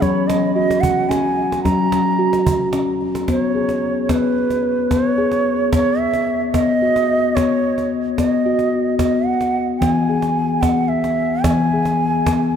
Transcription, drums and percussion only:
0.02 cajon bass soft
0.02 cajon slap soft
0.16 cajon slap soft
0.30 cajon slap medium
0.70 cajon slap soft
0.83 cajon bass medium
0.98 cajon slap soft
1.11 cajon slap medium
1.52 cajon slap soft
1.65 cajon bass medium
1.65 cajon slap soft
1.92 cajon slap medium
2.33 cajon slap soft
2.47 cajon bass medium
2.61 cajon slap soft
2.73 cajon slap medium
3.01 cajon slap soft
3.15 cajon slap soft
3.28 cajon bass soft
3.28 cajon slap soft
3.56 cajon slap soft
3.69 cajon slap soft
4.09 cajon bass soft
4.09 cajon slap medium
4.23 cajon slap soft
4.50 cajon slap soft
4.91 cajon bass medium
4.91 cajon slap soft
5.18 cajon slap soft
5.31 cajon slap soft
5.73 cajon bass medium
5.73 cajon slap medium
5.86 cajon slap soft
6.13 cajon slap soft
6.54 cajon bass medium
6.54 cajon slap medium
6.82 cajon slap soft
6.96 cajon slap soft
7.37 cajon bass soft
7.37 cajon slap medium
7.51 cajon slap soft
7.78 cajon slap soft
8.18 cajon bass soft
8.18 cajon slap soft
8.59 cajon slap soft
8.99 cajon bass medium
8.99 cajon slap soft
9.13 cajon slap soft
9.41 cajon slap soft
9.82 cajon bass medium
9.82 cajon slap medium
10.08 cajon slap soft
10.22 cajon slap soft
10.63 cajon bass medium
10.63 cajon slap medium
10.77 cajon slap soft
11.04 cajon slap soft
11.44 cajon bass medium
11.44 cajon slap medium
11.71 cajon slap soft
11.85 cajon slap soft
12.26 cajon bass medium
12.26 cajon slap medium
12.40 cajon slap soft

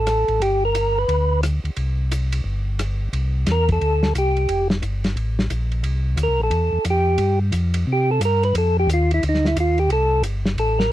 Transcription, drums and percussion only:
0.07 cross-stick medium
0.07 hi-hat pedal soft
0.07 ride medium
0.28 ride soft
0.42 ride medium
0.75 hi-hat pedal medium
0.75 ride medium
1.09 ride medium
1.43 cross-stick medium
1.43 hi-hat pedal medium
1.43 ride medium
1.65 ride soft
1.76 ride medium
2.12 hi-hat pedal medium
2.12 ride medium
2.32 ride medium
2.79 cross-stick medium
2.79 hi-hat pedal medium
2.79 ride medium
3.13 ride medium
3.46 snare soft
3.46 hi-hat pedal soft
3.46 ride medium
3.68 kick medium
3.68 ride soft
3.81 ride medium
4.03 snare medium
4.15 hi-hat pedal medium
4.15 ride medium
4.36 ride soft
4.49 ride medium
4.70 snare medium
4.82 hi-hat pedal soft
4.82 ride medium
5.04 snare soft
5.04 ride soft
5.17 ride medium
5.39 snare medium
5.50 hi-hat pedal medium
5.50 ride medium
5.72 ride soft
5.84 ride medium
6.17 hi-hat pedal medium
6.17 ride medium
6.51 ride medium
6.85 hi-hat pedal medium
6.85 ride medium
7.18 ride medium
7.52 hi-hat pedal medium
7.52 ride medium
7.74 ride medium
8.21 hi-hat pedal medium
8.21 ride medium
8.43 ride soft
8.55 ride medium
8.89 hi-hat pedal medium
8.89 ride medium
9.11 ride soft
9.23 ride medium
9.34 snare soft
9.45 snare soft
9.56 hi-hat pedal soft
9.56 ride medium
9.78 ride soft
9.90 ride medium
10.23 hi-hat pedal soft
10.23 ride medium
10.45 snare soft
10.58 ride medium
10.80 snare soft

